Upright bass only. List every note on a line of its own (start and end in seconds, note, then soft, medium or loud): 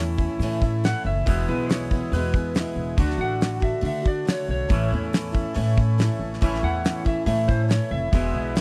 0.00 0.26 E2 medium
0.39 0.91 A2 loud
1.05 1.22 F#1 medium
1.27 1.44 E1 loud
1.48 2.00 B1 medium
2.12 2.63 E2 loud
2.75 2.93 E1 medium
2.98 3.15 D2 loud
3.18 3.70 A1 medium
3.83 4.34 D3 loud
4.48 4.65 B1 medium
4.71 4.87 A1 loud
4.92 5.43 E2 medium
5.56 6.07 A2 loud
6.19 6.37 A1 medium
6.43 6.59 A1 loud
6.63 7.14 E2 medium
7.26 7.78 A2 loud
7.91 8.08 F1 medium
8.13 8.30 E1 loud
8.33 8.61 B1 medium